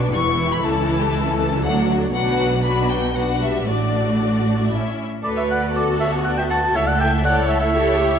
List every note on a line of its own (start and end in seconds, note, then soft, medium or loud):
0.00 0.12 B1 medium
0.00 0.11 B2 medium
0.00 0.13 F#3 soft
0.00 0.11 D4 medium
0.00 0.13 D4 medium
0.00 0.60 B4 medium
0.12 0.63 E1 medium
0.12 0.63 E2 medium
0.12 1.64 E3 medium
0.12 0.24 G3 soft
0.12 1.63 E4 medium
0.12 0.50 C#6 medium
0.23 0.37 B3 soft
0.38 0.51 E4 medium
0.49 0.63 G4 soft
0.49 0.64 B5 medium
0.62 1.61 C#2 medium
0.62 1.62 C#2 soft
0.62 0.75 A3 medium
0.62 2.10 A4 soft
0.62 1.38 A5 medium
0.74 0.88 C#4 medium
0.88 1.01 E4 soft
1.00 1.13 G4 soft
1.15 1.27 E4 medium
1.28 1.40 C#4 soft
1.39 1.52 A3 soft
1.39 1.63 A5 medium
1.51 1.64 C#4 soft
1.63 2.13 D2 medium
1.63 2.14 D2 medium
1.63 2.13 F#3 medium
1.63 1.76 A3 soft
1.63 2.13 D4 soft
1.63 1.88 F#5 medium
1.77 1.89 D4 soft
1.90 2.02 F#4 soft
2.01 2.14 D4 soft
2.13 3.63 B1 medium
2.13 3.63 B2 soft
2.13 2.61 F#3 soft
2.13 2.61 D4 soft
2.13 2.61 F#4 medium
2.13 2.62 B4 medium
2.13 2.60 F#5 medium
2.65 3.14 F#3 soft
2.65 3.14 D4 soft
2.65 3.14 F#4 medium
2.65 3.14 B4 soft
2.65 2.90 B5 medium
2.90 3.15 G5 medium
3.15 3.24 F#3 soft
3.15 3.66 D4 soft
3.15 3.66 F#4 soft
3.15 3.66 B4 soft
3.15 3.41 F#5 medium
3.41 3.67 G3 soft
3.41 3.68 E5 medium
3.67 4.70 A1 medium
3.67 4.72 A2 soft
3.67 4.72 A3 soft
3.67 4.70 D4 soft
3.67 4.70 F#4 soft
3.67 4.72 D5 soft
3.67 4.70 D5 medium
4.71 4.79 A1 soft
4.71 4.81 A2 soft
4.71 4.81 A3 soft
4.71 5.03 C#4 soft
4.71 5.04 E4 soft
4.71 5.03 E5 soft
5.22 6.71 D2 medium
5.22 5.72 A3 soft
5.22 6.72 F#4 soft
5.22 5.35 A4 medium
5.22 5.72 A4 soft
5.22 5.72 B4 soft
5.22 5.29 D5 medium
5.35 5.49 C#5 medium
5.35 5.43 E5 medium
5.48 5.74 D5 medium
5.48 5.62 F#5 medium
5.74 6.76 B3 soft
5.74 6.25 F#4 soft
5.74 6.00 A4 medium
5.74 6.25 A4 medium
5.74 5.87 D5 medium
6.00 6.26 C#5 medium
6.00 6.12 E5 medium
6.24 6.75 F#4 medium
6.24 7.26 A4 soft
6.24 6.38 D5 medium
6.24 6.30 F#5 medium
6.37 6.43 E5 soft
6.37 6.43 G5 medium
6.49 6.57 F#5 medium
6.49 6.78 A5 medium
6.75 8.19 C#2 medium
6.75 7.23 A3 medium
6.75 7.23 E4 medium
6.75 7.24 A4 medium
6.75 6.87 C#5 medium
6.75 6.89 E5 medium
6.85 6.91 D5 medium
6.85 7.00 F#5 medium
6.98 7.23 E5 medium
6.98 7.11 G5 medium
7.22 7.73 A3 medium
7.22 7.74 E4 medium
7.22 7.74 A4 medium
7.22 7.73 C#5 soft
7.22 7.49 D5 medium
7.22 7.36 F#5 medium
7.48 7.61 C#5 medium
7.48 7.60 E5 medium
7.61 8.19 C#5 medium
7.61 8.19 E5 medium
7.74 8.19 E4 medium
7.74 8.19 G4 medium
7.74 7.99 A4 medium
7.74 8.19 C#5 medium
7.99 8.19 G4 medium